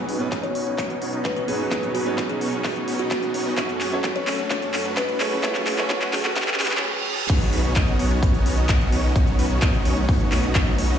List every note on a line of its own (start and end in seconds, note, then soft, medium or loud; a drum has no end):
0.00 0.17 B2 medium
0.00 3.54 B2 medium
0.00 0.17 F#3 medium
0.00 7.26 F#3 medium
0.00 0.18 C#4 medium
0.00 3.54 C#4 medium
0.00 0.18 D#4 medium
0.00 3.54 D#4 medium
0.00 0.18 B4 medium
0.00 riser medium
0.09 0.18 B3 medium
0.09 0.18 C#4 medium
0.09 0.18 D#4 medium
0.09 0.18 F#4 medium
0.09 0.18 B4 medium
0.09 open hi-hat loud
0.19 1.45 B2 medium
0.19 1.45 F#3 medium
0.19 0.29 B3 medium
0.19 0.29 C#4 medium
0.19 1.45 C#4 medium
0.19 0.29 D#4 medium
0.19 1.46 D#4 medium
0.19 0.29 F#4 medium
0.19 1.46 B4 medium
0.19 0.29 C#5 medium
0.19 closed hi-hat soft
0.32 0.52 B3 medium
0.32 0.52 C#4 medium
0.32 0.52 D#4 medium
0.32 0.52 F#4 medium
0.32 0.52 D#5 loud
0.32 kick loud
0.32 clap soft
0.32 closed hi-hat medium
0.43 0.90 C#5 medium
0.43 closed hi-hat soft
0.55 0.75 B3 medium
0.55 0.75 C#4 medium
0.55 0.75 D#4 medium
0.55 0.75 F#4 medium
0.55 0.75 C#5 loud
0.55 open hi-hat loud
0.67 closed hi-hat soft
0.78 0.98 B3 medium
0.78 0.98 C#4 medium
0.78 0.98 D#4 medium
0.78 0.98 F#4 medium
0.78 0.98 C#5 loud
0.78 kick loud
0.78 clap soft
0.78 closed hi-hat medium
0.90 closed hi-hat soft
1.02 1.12 B3 medium
1.02 1.12 C#4 medium
1.02 1.12 D#4 medium
1.02 1.12 F#4 medium
1.02 1.12 C#5 medium
1.02 open hi-hat loud
1.13 1.23 B3 medium
1.13 1.23 C#4 medium
1.13 1.23 D#4 medium
1.13 1.23 F#4 medium
1.13 1.23 D#5 medium
1.13 closed hi-hat soft
1.25 1.45 B3 loud
1.25 1.45 C#4 medium
1.25 1.45 D#4 medium
1.25 1.45 F#4 medium
1.25 1.32 B4 medium
1.25 1.45 D#5 loud
1.25 kick loud
1.25 clap medium
1.25 closed hi-hat medium
1.36 1.44 B4 medium
1.36 closed hi-hat soft
1.48 1.61 B2 medium
1.48 1.61 F#3 medium
1.48 1.57 B3 medium
1.48 1.62 C#4 medium
1.48 1.57 C#4 medium
1.48 1.57 D#4 medium
1.48 1.62 D#4 medium
1.48 1.57 F#4 medium
1.48 1.56 G#4 medium
1.48 1.62 B4 medium
1.48 1.57 C#5 medium
1.48 open hi-hat loud
1.60 1.69 B3 medium
1.60 1.69 C#4 medium
1.60 1.69 D#4 medium
1.60 1.69 F#4 medium
1.60 1.67 G#4 medium
1.60 1.69 D#5 loud
1.71 2.03 B2 medium
1.71 2.03 F#3 medium
1.71 1.92 B3 medium
1.71 1.92 C#4 medium
1.71 2.04 C#4 medium
1.71 1.92 D#4 medium
1.71 2.04 D#4 medium
1.71 2.04 B4 loud
1.71 1.92 C#5 loud
1.71 kick loud
1.71 clap medium
1.71 closed hi-hat medium
1.83 closed hi-hat soft
1.95 2.04 B3 medium
1.95 2.04 C#4 medium
1.95 2.04 D#4 medium
1.95 2.11 F#4 medium
1.95 2.04 F#4 medium
1.95 2.04 B4 loud
1.95 open hi-hat loud
2.05 3.54 B2 medium
2.05 3.54 F#3 medium
2.05 2.15 B3 medium
2.05 3.55 C#4 medium
2.05 2.15 C#4 medium
2.05 2.15 D#4 medium
2.05 3.55 D#4 medium
2.05 2.15 F#4 medium
2.05 3.55 B4 medium
2.05 2.15 C#5 medium
2.05 closed hi-hat soft
2.18 2.38 B3 medium
2.18 2.38 C#4 medium
2.18 2.38 D#4 medium
2.18 2.38 F#4 medium
2.18 2.38 D#5 loud
2.18 kick loud
2.18 clap medium
2.18 closed hi-hat medium
2.29 2.46 G#4 medium
2.29 closed hi-hat soft
2.41 2.61 B3 medium
2.41 2.61 C#4 medium
2.41 2.61 D#4 medium
2.41 2.61 F#4 medium
2.41 2.61 C#5 loud
2.41 open hi-hat loud
2.53 closed hi-hat soft
2.64 2.84 B3 medium
2.64 2.84 C#4 medium
2.64 2.84 D#4 medium
2.64 2.84 F#4 medium
2.64 2.84 C#5 loud
2.64 kick loud
2.64 clap medium
2.64 open hi-hat medium
2.76 closed hi-hat soft
2.88 2.98 B3 medium
2.88 2.98 C#4 medium
2.88 2.98 D#4 medium
2.88 2.98 F#4 medium
2.88 2.98 C#5 medium
2.88 open hi-hat loud
2.99 3.09 B3 medium
2.99 3.09 C#4 medium
2.99 3.09 D#4 medium
2.99 3.34 F#4 medium
2.99 3.09 F#4 medium
2.99 3.09 D#5 medium
2.99 closed hi-hat soft
3.11 3.31 B3 loud
3.11 3.31 C#4 medium
3.11 3.31 D#4 medium
3.11 3.31 F#4 medium
3.11 3.31 D#5 loud
3.11 kick loud
3.11 clap medium
3.11 closed hi-hat medium
3.23 closed hi-hat soft
3.34 3.43 B3 medium
3.34 3.43 C#4 medium
3.34 3.43 D#4 medium
3.34 3.43 F#4 medium
3.34 3.43 C#5 medium
3.34 open hi-hat loud
3.46 3.55 B3 medium
3.46 3.55 C#4 medium
3.46 3.55 D#4 medium
3.46 3.55 F#4 medium
3.46 3.55 D#5 loud
3.57 7.26 F#2 medium
3.57 3.89 A3 medium
3.57 7.26 A3 medium
3.57 3.89 C#4 medium
3.57 3.78 C#4 medium
3.57 7.26 C#4 medium
3.57 3.78 F#4 medium
3.57 3.90 F#4 medium
3.57 3.78 A4 loud
3.57 3.90 C#5 medium
3.57 kick loud
3.57 clap medium
3.57 closed hi-hat medium
3.69 closed hi-hat soft
3.81 3.90 C#4 medium
3.81 3.90 F#4 medium
3.81 3.90 G#4 loud
3.81 clap medium
3.81 open hi-hat loud
3.91 5.17 A3 medium
3.91 5.17 C#4 medium
3.91 4.01 C#4 medium
3.91 4.01 F#4 medium
3.91 5.18 F#4 medium
3.91 4.01 A4 medium
3.91 5.18 C#5 medium
3.91 closed hi-hat soft
4.04 4.24 C#4 medium
4.04 4.24 F#4 medium
4.04 4.24 B4 loud
4.04 kick loud
4.04 clap medium
4.04 closed hi-hat medium
4.16 4.62 C#5 medium
4.16 closed hi-hat soft
4.27 4.47 C#4 medium
4.27 4.47 F#4 medium
4.27 4.47 A4 loud
4.27 clap medium
4.27 open hi-hat loud
4.39 closed hi-hat soft
4.51 4.70 C#4 medium
4.51 4.70 F#4 medium
4.51 4.70 A4 loud
4.51 kick loud
4.51 clap medium
4.51 closed hi-hat medium
4.62 closed hi-hat soft
4.74 4.84 C#4 medium
4.74 4.84 F#4 medium
4.74 4.84 A4 medium
4.74 clap medium
4.74 open hi-hat loud
4.85 4.95 C#4 medium
4.85 4.95 F#4 medium
4.85 4.95 B4 medium
4.85 closed hi-hat soft
4.97 5.18 C#4 loud
4.97 5.18 F#4 medium
4.97 5.04 B4 medium
4.97 5.18 B4 loud
4.97 kick loud
4.97 clap medium
4.97 closed hi-hat medium
5.09 5.16 B4 medium
5.09 closed hi-hat soft
5.20 5.33 A3 medium
5.20 5.34 C#4 medium
5.20 5.29 C#4 medium
5.20 5.29 F#4 medium
5.20 5.34 F#4 medium
5.20 5.28 G#4 medium
5.20 5.29 A4 loud
5.20 5.34 C#5 medium
5.20 clap medium
5.20 open hi-hat loud
5.32 5.41 C#4 medium
5.32 5.41 F#4 medium
5.32 5.39 G#4 medium
5.32 5.41 B4 loud
5.43 5.75 A3 medium
5.43 5.76 C#4 medium
5.43 5.64 C#4 medium
5.43 5.64 F#4 medium
5.43 5.76 F#4 medium
5.43 5.64 A4 loud
5.43 5.76 C#5 loud
5.43 kick loud
5.43 clap medium
5.43 closed hi-hat medium
5.55 clap medium
5.55 closed hi-hat soft
5.67 5.76 C#4 medium
5.67 5.76 F#4 medium
5.67 5.83 G#4 medium
5.67 5.76 G#4 loud
5.67 clap medium
5.67 open hi-hat loud
5.77 6.82 A3 medium
5.77 6.83 C#4 medium
5.77 5.87 C#4 medium
5.77 5.87 F#4 medium
5.77 6.83 F#4 medium
5.77 5.87 A4 medium
5.77 6.84 C#5 medium
5.77 clap medium
5.77 closed hi-hat soft
5.90 6.11 C#4 medium
5.90 6.11 F#4 medium
5.90 6.11 B4 loud
5.90 kick loud
5.90 clap medium
5.90 closed hi-hat medium
6.02 clap medium
6.02 closed hi-hat soft
6.13 6.33 C#4 medium
6.13 6.33 F#4 medium
6.13 6.60 G#4 medium
6.13 6.33 A4 loud
6.13 clap loud
6.13 open hi-hat loud
6.25 clap medium
6.37 6.56 C#4 medium
6.37 6.56 F#4 medium
6.37 6.56 A4 loud
6.37 kick loud
6.37 clap loud
6.37 open hi-hat medium
6.37 reverse cymbal medium
6.42 clap medium
6.48 clap medium
6.48 closed hi-hat soft
6.54 clap medium
6.60 6.83 C#4 medium
6.60 6.83 F#4 medium
6.60 6.83 B4 loud
6.60 clap loud
6.60 open hi-hat loud
6.66 clap loud
6.71 clap medium
6.77 clap loud
7.30 7.51 B1 medium
7.30 10.98 D#3 medium
7.30 9.14 B3 medium
7.30 7.50 B3 medium
7.30 10.98 C#4 loud
7.30 7.50 C#4 medium
7.30 7.50 D#4 medium
7.30 7.50 F#4 medium
7.30 7.50 C#5 loud
7.30 kick loud
7.30 closed hi-hat medium
7.30 crash loud
7.41 closed hi-hat soft
7.53 7.62 B1 loud
7.53 7.62 B3 medium
7.53 7.62 C#4 medium
7.53 7.62 D#4 medium
7.53 7.62 F#4 medium
7.53 7.62 B4 medium
7.53 open hi-hat loud
7.64 7.74 B1 loud
7.64 7.73 B3 medium
7.64 7.73 C#4 medium
7.64 7.73 D#4 medium
7.64 7.73 F#4 medium
7.64 7.73 C#5 medium
7.64 closed hi-hat soft
7.76 7.97 B1 loud
7.76 7.97 B3 medium
7.76 7.97 C#4 medium
7.76 7.97 D#4 medium
7.76 7.97 F#4 medium
7.76 7.97 D#5 loud
7.76 kick loud
7.76 clap loud
7.76 closed hi-hat loud
7.88 closed hi-hat soft
7.99 8.20 B1 loud
7.99 8.19 B3 medium
7.99 8.19 C#4 medium
7.99 8.19 D#4 medium
7.99 8.19 F#4 medium
7.99 8.19 C#5 loud
7.99 open hi-hat loud
8.11 closed hi-hat soft
8.23 8.44 B1 medium
8.23 8.42 B3 medium
8.23 8.42 C#4 medium
8.23 8.42 F#4 medium
8.23 8.42 C#5 loud
8.23 kick loud
8.23 closed hi-hat loud
8.34 closed hi-hat soft
8.46 8.55 B1 loud
8.46 8.56 B3 medium
8.46 8.56 C#4 medium
8.46 8.56 D#4 medium
8.46 8.56 F#4 medium
8.46 8.56 C#5 medium
8.46 open hi-hat loud
8.57 8.67 B1 loud
8.57 8.67 B3 medium
8.57 8.67 C#4 medium
8.57 8.67 D#4 medium
8.57 8.67 F#4 medium
8.57 8.67 D#5 medium
8.57 closed hi-hat soft
8.69 8.90 B1 loud
8.69 8.90 B3 loud
8.69 8.90 D#4 loud
8.69 8.90 F#4 loud
8.69 8.90 D#5 loud
8.69 kick loud
8.69 clap loud
8.69 closed hi-hat medium
8.81 closed hi-hat soft
8.92 9.02 B1 loud
8.92 9.01 B3 medium
8.92 9.01 C#4 medium
8.92 9.01 D#4 medium
8.92 9.01 F#4 medium
8.92 9.01 C#5 medium
8.92 open hi-hat loud
9.04 9.13 B1 loud
9.04 9.13 B3 loud
9.04 9.13 C#4 medium
9.04 9.13 D#4 medium
9.04 9.13 F#4 medium
9.04 9.13 D#5 loud
9.16 9.37 B1 loud
9.16 10.99 A3 medium
9.16 9.36 B3 medium
9.16 9.36 C#4 medium
9.16 9.36 D#4 medium
9.16 9.36 F#4 medium
9.16 9.36 C#5 loud
9.16 kick loud
9.16 closed hi-hat medium
9.27 closed hi-hat soft
9.39 9.48 B1 loud
9.39 9.48 B3 medium
9.39 9.48 C#4 medium
9.39 9.48 D#4 medium
9.39 9.48 F#4 medium
9.39 9.48 B4 loud
9.39 open hi-hat loud
9.51 9.60 B1 loud
9.51 9.59 B3 medium
9.51 9.59 C#4 medium
9.51 9.59 D#4 medium
9.51 9.59 F#4 medium
9.51 9.59 C#5 medium
9.51 closed hi-hat soft
9.62 9.83 B1 medium
9.62 9.83 B3 medium
9.62 9.83 C#4 medium
9.62 9.83 D#4 medium
9.62 9.83 D#5 loud
9.62 kick loud
9.62 clap loud
9.62 closed hi-hat medium
9.74 closed hi-hat soft
9.85 10.06 B1 loud
9.85 10.05 B3 medium
9.85 10.05 C#4 medium
9.85 10.05 D#4 medium
9.85 10.05 F#4 medium
9.85 10.05 C#5 loud
9.85 open hi-hat loud
9.97 closed hi-hat soft
10.09 10.30 B1 medium
10.09 10.28 B3 loud
10.09 10.28 C#4 medium
10.09 10.28 D#4 medium
10.09 10.28 F#4 medium
10.09 10.28 C#5 loud
10.09 kick loud
10.09 open hi-hat medium
10.20 closed hi-hat soft
10.32 10.41 B1 loud
10.32 10.42 B3 medium
10.32 10.42 C#4 medium
10.32 10.42 D#4 medium
10.32 10.42 F#4 medium
10.32 10.42 C#5 medium
10.32 clap medium
10.32 open hi-hat loud
10.43 10.53 B1 medium
10.43 10.54 B3 medium
10.43 10.54 C#4 medium
10.43 10.53 D#4 medium
10.43 10.54 F#4 medium
10.43 10.54 D#5 medium
10.43 closed hi-hat soft
10.55 10.76 B1 loud
10.55 10.76 B3 loud
10.55 10.76 C#4 medium
10.55 10.76 D#4 loud
10.55 10.76 F#4 medium
10.55 10.76 D#5 loud
10.55 kick loud
10.55 clap loud
10.55 closed hi-hat medium
10.67 closed hi-hat soft
10.78 10.88 B1 medium
10.78 10.87 B3 medium
10.78 10.87 C#4 medium
10.78 10.87 D#4 medium
10.78 10.87 F#4 medium
10.78 10.87 C#5 loud
10.78 open hi-hat loud
10.90 10.99 B1 loud
10.90 10.99 B3 medium
10.90 10.99 C#4 medium
10.90 10.99 D#4 medium
10.90 10.99 F#4 medium
10.90 10.99 D#5 loud